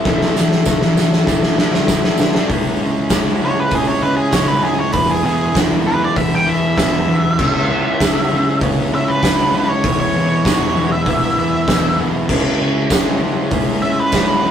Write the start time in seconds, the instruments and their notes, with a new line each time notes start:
Already playing: transistor combo organ E4 A4 E5
0.04 distorted electric guitar A2 E3 A3, kick, snare
0.21 snare
0.36 distorted electric guitar A2 E3, snare, tambourine
0.52 snare
0.66 distorted electric guitar D#3 A#3, kick, snare, tambourine
0.82 distorted electric guitar A2 E3, snare
0.97 distorted electric guitar A2 E3, snare, tambourine
1.13 snare
1.26 distorted electric guitar A2 E3 A3, kick, snare, tambourine
1.43 snare
1.58 snare, tambourine
1.74 distorted electric guitar G2 D3 G3, snare
1.88 kick, snare, tambourine
2.04 distorted electric guitar A2 E3, snare
2.18 distorted electric guitar D3 A3, snare, tambourine
2.35 distorted electric guitar G3 D4, snare
2.49 distorted electric guitar C#3 G#3 C#4, transistor combo organ E4 G#4 C#5, kick, open hi-hat
2.82 distorted electric guitar C#3 G#3 C#4
3.10 distorted electric guitar C#3 G#3 C#4, kick, snare, open hi-hat, tambourine
3.41 distorted electric guitar C#3 G#3 C#4
3.45 lead electric guitar C#5
3.60 lead electric guitar B4
3.71 distorted electric guitar C#3 G#3 C#4, kick, open hi-hat
3.75 lead electric guitar G#4
3.87 lead electric guitar C#5
4.03 distorted electric guitar C#3 G#3 C#4, lead electric guitar B4
4.17 lead electric guitar G#4
4.32 distorted electric guitar C#3 G#3 C#4, lead electric guitar C#5, kick, snare, open hi-hat, tambourine
4.48 lead electric guitar B4
4.61 distorted electric guitar C#3 G#3 C#4, lead electric guitar G#4
4.79 lead electric guitar C#5
4.93 distorted electric guitar E2 B2 E3, transistor combo organ E4 G#4 B4, lead electric guitar B4, kick, open hi-hat
5.11 lead electric guitar G#4
5.23 distorted electric guitar E2 B2 E3, lead electric guitar G#4
5.53 distorted electric guitar E2 B2 E3, kick, snare, open hi-hat, tambourine
5.84 distorted electric guitar E2 B2 E3, lead electric guitar B4
6.02 lead electric guitar D5
6.14 distorted electric guitar E2 B2 E3, lead electric guitar E5, kick, open hi-hat
6.35 lead electric guitar G5
6.45 distorted electric guitar E2 B2 E3, lead electric guitar E5
6.76 distorted electric guitar E2 B2 E3, lead electric guitar E5, kick, snare, open hi-hat, tambourine
7.07 distorted electric guitar E2 B2 E3
7.38 distorted electric guitar C#3 G#3 C#4, transistor combo organ E4 G#4 C#5, kick, crash
7.69 distorted electric guitar C#3 G#3 C#4
8.00 distorted electric guitar C#3 G#3 C#4, kick, snare, open hi-hat, tambourine
8.32 distorted electric guitar C#3 G#3 C#4
8.61 distorted electric guitar C#3 G#3 C#4, kick, open hi-hat
8.93 distorted electric guitar C#3 G#3 C#4, lead electric guitar E5
9.08 lead electric guitar B4
9.22 distorted electric guitar C#3 G#3 C#4, kick, snare, open hi-hat, tambourine
9.54 distorted electric guitar C#3 G#3 C#4
9.69 lead electric guitar C#5
9.83 distorted electric guitar E2 B2 E3, transistor combo organ E4 G#4 B4, kick, open hi-hat
10.00 lead electric guitar C#5
10.15 distorted electric guitar E2 B2 E3
10.45 distorted electric guitar E2 B2 E3, kick, snare, open hi-hat, tambourine
10.75 distorted electric guitar E2 B2 E3
10.92 lead electric guitar E5
11.05 distorted electric guitar E2 B2 E3, kick, open hi-hat
11.37 distorted electric guitar E2 B2 E3, lead electric guitar E5
11.67 distorted electric guitar E2 B2 E3, kick, snare, open hi-hat, tambourine
11.98 distorted electric guitar E2 B2 E3
12.27 distorted electric guitar C#3 G#3 C#4, transistor combo organ E4 G#4 C#5, kick, crash
12.59 distorted electric guitar C#3 G#3 C#4
12.90 distorted electric guitar C#3 G#3 C#4, kick, snare, open hi-hat, tambourine
13.21 distorted electric guitar C#3 G#3 C#4
13.50 distorted electric guitar C#3 G#3 C#4, kick, open hi-hat
13.82 distorted electric guitar C#3 G#3 C#4, lead electric guitar E5
14.00 lead electric guitar B4
14.11 distorted electric guitar C#3 G#3 C#4, kick, snare, open hi-hat, tambourine
14.42 distorted electric guitar C#3 G#3 C#4